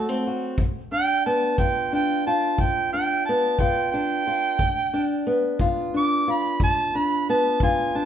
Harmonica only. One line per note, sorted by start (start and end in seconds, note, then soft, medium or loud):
0.00 0.55 A4 loud
0.93 1.25 G5 loud
1.26 1.58 A5 medium
1.59 1.91 G5 medium
1.94 2.26 G5 loud
2.27 2.62 A5 medium
2.61 2.92 G5 medium
2.93 3.25 G5 loud
3.25 3.60 A5 medium
3.59 3.91 G5 medium
3.92 5.22 G5 loud
5.97 6.33 D6 loud
6.32 6.62 B5 medium
6.64 6.98 A5 loud
6.97 7.28 B5 medium
7.30 7.62 A5 loud
7.64 7.99 G#5 loud
7.97 8.05 A5 loud